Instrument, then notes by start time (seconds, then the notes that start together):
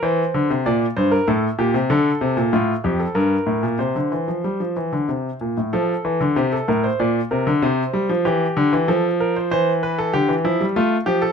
grand piano
0.03 E3 C5
0.34 D3
0.50 C3
0.66 A#2 D5
0.96 G2 C5
1.11 A#4
1.28 A2 A4
1.59 A#2 G4
1.74 C3
1.90 D3 A4
2.21 C3
2.37 A#2
2.53 A2 F4
2.84 F2 G4
3.00 A4
3.15 G2 A#4
3.46 A2
3.63 A#2
3.79 C3 C5
3.96 D3
4.12 E3
4.28 F3
4.44 G3
4.60 F3
4.77 E3
4.93 D3
5.09 C3
5.41 A#2
5.57 A2
5.73 F3 A4
6.05 E3
6.21 D3
6.36 C3 G4
6.53 A4
6.68 A2 A#4
6.84 C5
7.00 A#2 D5
7.31 C3 A#4
7.47 D3
7.62 C3 C5
7.93 G3
8.09 F3
8.25 E3 G4
8.57 D3
8.73 E3
8.88 F3 A4
9.20 A#4
9.36 C5
9.51 E3 C5
9.83 B4
9.98 A4
10.13 D3 G4
10.29 E3
10.44 F3 E4
10.61 G3
10.76 A3 F4
11.06 F3 G4
11.22 A4